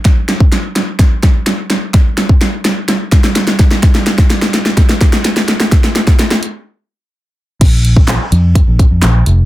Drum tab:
CC |----------------|----------------|----------------|----------------|
HH |x-x-x-x-x-x-x-x-|x-x-x-x-x-x-x-x-|x-x-x-x-x-x-x-x-|x-x-x-x---------|
CP |----------------|----------------|----------------|----------------|
SD |o-o-o-o-o-o-o-o-|o-o-o-o-o-oooooo|oooooooooooooooo|oooooo----------|
BD |o--o----o-o-----|o--o------o---o-|o--o----o-o-----|o--o------------|

CC |x---------------|
HH |x-x-x-x-x-x-x-x-|
CP |----x-------x---|
SD |----o-------o---|
BD |o--o----o-o-----|